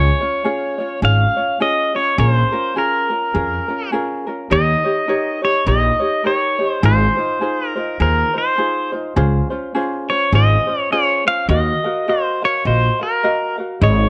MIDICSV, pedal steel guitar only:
0, 0, Header, 1, 2, 480
1, 0, Start_track
1, 0, Key_signature, -5, "major"
1, 0, Tempo, 581959
1, 1802, Time_signature, 4, 2, 24, 8
1, 11621, End_track
2, 0, Start_track
2, 0, Title_t, "Pedal steel guitar"
2, 0, Program_c, 0, 26
2, 0, Note_on_c, 0, 73, 86
2, 820, Note_off_c, 0, 73, 0
2, 864, Note_on_c, 0, 77, 95
2, 1333, Note_off_c, 0, 77, 0
2, 1336, Note_on_c, 0, 75, 81
2, 1617, Note_on_c, 0, 73, 74
2, 1620, Note_off_c, 0, 75, 0
2, 1808, Note_off_c, 0, 73, 0
2, 1812, Note_on_c, 0, 73, 82
2, 1902, Note_off_c, 0, 73, 0
2, 1902, Note_on_c, 0, 72, 82
2, 2296, Note_on_c, 0, 70, 61
2, 2301, Note_off_c, 0, 72, 0
2, 3215, Note_off_c, 0, 70, 0
2, 3732, Note_on_c, 0, 75, 107
2, 4456, Note_off_c, 0, 75, 0
2, 4492, Note_on_c, 0, 73, 90
2, 4683, Note_off_c, 0, 73, 0
2, 4686, Note_on_c, 0, 75, 91
2, 5166, Note_off_c, 0, 75, 0
2, 5170, Note_on_c, 0, 73, 78
2, 5524, Note_off_c, 0, 73, 0
2, 5524, Note_on_c, 0, 72, 78
2, 5651, Note_off_c, 0, 72, 0
2, 5654, Note_on_c, 0, 72, 82
2, 6331, Note_off_c, 0, 72, 0
2, 6331, Note_on_c, 0, 70, 82
2, 6614, Note_off_c, 0, 70, 0
2, 6614, Note_on_c, 0, 70, 80
2, 6897, Note_off_c, 0, 70, 0
2, 6911, Note_on_c, 0, 72, 71
2, 7344, Note_off_c, 0, 72, 0
2, 8329, Note_on_c, 0, 73, 73
2, 8528, Note_off_c, 0, 73, 0
2, 8539, Note_on_c, 0, 75, 91
2, 8918, Note_off_c, 0, 75, 0
2, 8918, Note_on_c, 0, 73, 91
2, 9008, Note_off_c, 0, 73, 0
2, 9011, Note_on_c, 0, 73, 80
2, 9268, Note_off_c, 0, 73, 0
2, 9301, Note_on_c, 0, 77, 97
2, 9478, Note_off_c, 0, 77, 0
2, 9481, Note_on_c, 0, 75, 95
2, 9974, Note_off_c, 0, 75, 0
2, 9976, Note_on_c, 0, 72, 66
2, 10258, Note_off_c, 0, 72, 0
2, 10269, Note_on_c, 0, 73, 79
2, 10448, Note_off_c, 0, 73, 0
2, 10451, Note_on_c, 0, 72, 81
2, 10735, Note_off_c, 0, 72, 0
2, 10746, Note_on_c, 0, 70, 64
2, 11180, Note_off_c, 0, 70, 0
2, 11411, Note_on_c, 0, 73, 84
2, 11621, Note_off_c, 0, 73, 0
2, 11621, End_track
0, 0, End_of_file